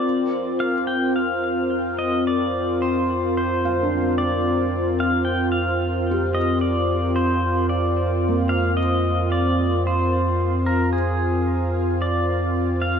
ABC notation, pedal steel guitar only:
X:1
M:4/4
L:1/16
Q:1/4=55
K:Bbmix
V:1 name="Pedal steel guitar"
d2 f g f3 e d2 c2 c3 d- | d2 f g f3 e d2 c2 d3 f | e2 d2 c3 B A4 d3 f |]